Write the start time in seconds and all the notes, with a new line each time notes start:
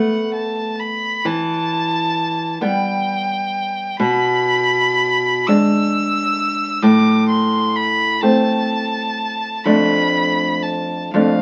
Already playing: A3 B3 F#5
0.34 A5
0.80 B5
1.25 E3 A5
2.61 G3 B3 G5
3.99 B2 B5
5.47 G#3 D4 E6
6.82 A2 D6
7.29 C6
7.76 B5
8.21 A3 C4 A5
9.64 F2 A3 D4 B5
10.63 A5
11.14 F2 A3 D4 F5